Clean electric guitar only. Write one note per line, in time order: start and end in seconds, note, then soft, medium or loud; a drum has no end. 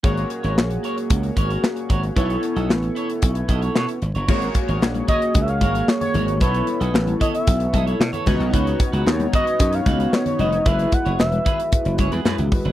0.03 0.28 F#4 medium
0.03 0.29 A#4 medium
0.03 0.29 C#5 medium
0.30 muted clean electric guitar stroke soft
0.43 0.56 F#4 medium
0.43 0.56 A#4 medium
0.43 0.55 C#5 medium
0.70 muted clean electric guitar stroke soft
0.83 0.98 F#4 medium
0.83 0.97 A#4 medium
0.83 0.95 C#5 medium
0.96 muted clean electric guitar stroke soft
1.10 muted clean electric guitar stroke soft
1.23 muted clean electric guitar stroke soft
1.36 1.50 F#4 medium
1.36 1.49 A#4 medium
1.36 1.48 C#5 medium
1.49 1.62 F#4 soft
1.49 1.62 A#4 medium
1.49 1.61 C#5 medium
1.63 muted clean electric guitar stroke soft
1.76 muted clean electric guitar stroke soft
1.89 2.05 F#4 medium
1.89 2.03 A#4 medium
1.89 2.01 C#5 medium
2.03 muted clean electric guitar stroke soft
2.16 2.40 E4 medium
2.16 2.41 A4 medium
2.16 2.41 C#5 medium
2.42 muted clean electric guitar stroke soft
2.56 2.69 E4 medium
2.56 2.68 A4 medium
2.56 2.68 D#5 medium
2.83 muted clean electric guitar stroke medium
2.95 3.11 E4 medium
2.95 3.09 A4 medium
2.95 3.07 C#5 medium
3.09 muted clean electric guitar stroke medium
3.22 muted clean electric guitar stroke soft
3.35 muted clean electric guitar stroke soft
3.48 3.62 E4 medium
3.48 3.61 A4 medium
3.48 3.61 D#5 medium
3.61 3.73 E4 soft
3.61 3.74 A4 soft
3.61 3.74 C#5 medium
3.75 3.90 E4 medium
3.75 3.88 A4 medium
3.75 3.87 C#5 loud
3.88 muted clean electric guitar stroke soft
4.01 muted clean electric guitar stroke soft
4.15 4.27 F#4 medium
4.15 4.28 A#4 medium
4.15 4.27 C#5 medium
4.28 4.53 F#4 medium
4.28 4.53 A#4 medium
4.28 4.54 C#5 loud
4.55 muted clean electric guitar stroke soft
4.68 4.81 F#4 medium
4.68 4.81 A#4 medium
4.68 4.80 C#5 medium
4.95 muted clean electric guitar stroke soft
5.08 5.23 F#4 medium
5.08 5.22 A#4 medium
5.08 5.20 C#5 medium
5.21 muted clean electric guitar stroke soft
5.35 muted clean electric guitar stroke soft
5.48 muted clean electric guitar stroke soft
5.61 5.75 F#4 medium
5.61 5.74 A#4 medium
5.61 5.73 C#5 loud
5.74 5.86 F#4 medium
5.74 5.87 A#4 medium
5.74 5.86 C#5 medium
5.88 muted clean electric guitar stroke soft
6.01 muted clean electric guitar stroke soft
6.14 6.29 F#4 medium
6.14 6.27 A#4 medium
6.14 6.26 C#5 medium
6.27 muted clean electric guitar stroke soft
6.40 6.65 E4 medium
6.40 6.66 A4 medium
6.40 6.66 C#5 loud
6.67 muted clean electric guitar stroke soft
6.80 6.94 E4 medium
6.80 6.93 A4 medium
6.80 6.93 D#5 medium
7.07 muted clean electric guitar stroke medium
7.20 7.36 E4 medium
7.20 7.34 A4 medium
7.20 7.33 C#5 medium
7.34 muted clean electric guitar stroke soft
7.47 muted clean electric guitar stroke soft
7.60 muted clean electric guitar stroke soft
7.73 7.87 E4 medium
7.73 7.86 A4 medium
7.73 7.86 D#5 medium
7.86 7.98 E4 medium
7.86 7.99 A4 soft
7.86 7.99 C#5 medium
8.00 muted clean electric guitar stroke soft
8.13 8.25 E4 medium
8.13 8.27 A4 medium
8.13 8.27 C#5 medium
8.26 8.38 D#4 medium
8.26 8.39 F#4 medium
8.26 8.38 B4 medium
8.39 muted clean electric guitar stroke soft
8.53 8.78 D#4 medium
8.53 8.78 F#4 medium
8.53 8.78 B4 loud
8.79 muted clean electric guitar stroke soft
8.92 9.06 D#4 medium
8.92 9.05 F#4 medium
8.92 9.05 B4 medium
9.20 muted clean electric guitar stroke soft
9.32 9.48 D#4 medium
9.32 9.46 F#4 loud
9.32 9.45 B4 medium
9.46 muted clean electric guitar stroke soft
9.60 muted clean electric guitar stroke soft
9.73 muted clean electric guitar stroke medium
9.86 10.00 D#4 medium
9.86 9.99 F#4 medium
9.86 9.98 B4 medium
9.99 10.11 D#4 soft
9.99 10.12 F#4 medium
9.99 10.11 B4 medium
10.13 muted clean electric guitar stroke soft
10.26 muted clean electric guitar stroke soft
10.39 10.54 D#4 medium
10.39 10.52 F#4 medium
10.39 10.51 B4 medium
10.52 muted clean electric guitar stroke soft
10.65 10.90 E4 medium
10.65 10.91 G#4 medium
10.65 10.91 B4 medium
10.92 muted clean electric guitar stroke soft
11.05 11.18 E4 soft
11.05 11.18 G#4 medium
11.05 11.17 C#5 medium
11.32 muted clean electric guitar stroke soft
11.45 11.60 E4 medium
11.45 11.58 G#4 medium
11.45 11.57 B4 loud
11.58 muted clean electric guitar stroke soft
11.72 muted clean electric guitar stroke soft
11.85 muted clean electric guitar stroke soft
11.98 12.12 E4 medium
11.98 12.11 G#4 medium
11.98 12.11 C#5 medium
12.12 12.24 E4 soft
12.12 12.24 G#4 soft
12.12 12.24 B4 medium
12.25 12.40 E4 medium
12.25 12.39 G#4 medium
12.25 12.37 B4 medium
12.38 muted clean electric guitar stroke soft
12.52 muted clean electric guitar stroke soft
12.65 12.72 E4 soft
12.65 12.72 G#4 medium
12.65 12.72 B4 medium